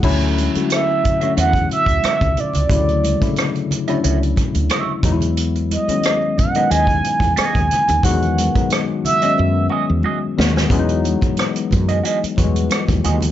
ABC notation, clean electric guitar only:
X:1
M:4/4
L:1/16
Q:"Swing 16ths" 1/4=90
K:Edor
V:1 name="Clean electric guitar"
z6 z [Fce] [Fce] z3 [Fce] z3 | z6 z [Fce] [Fce] z3 [Fce] z3 | z6 z [F^G^d] [FGd] z3 [FGd] z3 | z6 z [F^G^d] z2 [FGd] z [FGd] z3 |
z6 z [F^G^d] [FGd] z4 z [FGd] z |]